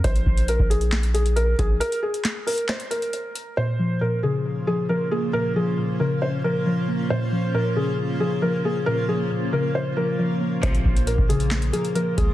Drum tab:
HH |xx-xx-xxxxxxx-x-|xx-xx-oxxxxxx-x-|----------------|----------------|
CP |--------x-------|----x---x-------|----------------|----------------|
SD |--------o-------|----o---o-------|----------------|----------------|
BD |o-o--o--------o-|----------------|----------------|----------------|

HH |----------------|----------------|xx-xx-xxxxxxx-x-|
CP |----------------|----------------|--------x-------|
SD |----------------|----------------|--------o-------|
BD |----------------|----------------|o-o--o--------o-|